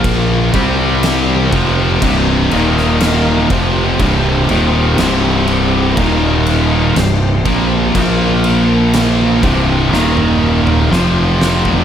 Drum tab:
CC |x-x-x-x-x-x-x-x-|x-x-x-x-x-x-x-x-|x-x-x-x---------|
SD |----o------oo---|----o-------o---|----o---o---o-o-|
T1 |----------------|----------------|---------o------|
T2 |----------------|----------------|-----------o----|
FT |----------------|----------------|---------------o|
BD |o-o---o-o-----o-|o-------o-----o-|o-----o---------|